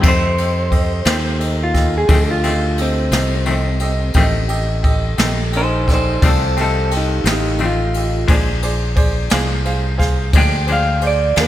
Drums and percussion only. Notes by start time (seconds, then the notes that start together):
0.03 kick, crash
0.38 ride
0.72 kick, ride
1.05 snare, ride
1.40 ride
1.74 kick, snare, ride
2.08 kick, ride
2.44 ride
2.78 ride
3.12 snare, ride
3.46 ride
3.80 ride
4.14 kick, ride
4.49 ride
4.84 kick, ride
5.18 snare, ride
5.53 ride
5.88 kick, snare, ride
6.22 kick, ride
6.57 ride
6.91 ride
7.25 snare, ride
7.58 ride
7.94 ride
8.28 kick, ride
8.62 ride
8.96 kick, ride
9.30 snare, ride
9.65 ride
10.00 kick, snare, ride
10.33 kick, ride
10.67 ride
11.01 ride
11.36 snare, ride